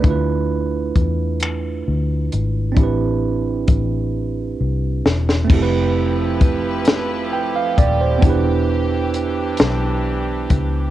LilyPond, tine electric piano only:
\new Staff \with { instrumentName = "Tine electric piano" } { \time 6/8 \key f \lydian \tempo 4. = 44 << { r2. | r2. | r2 g''16 f''16 d''16 c''16~ | c''16 r2 r8. | } \\ { <a d' e' f' b'>2. | <c' d' e' g' b'>2. | <a c' e' g' a' b'>2. | <b d' e' g' b'>2. | } >> }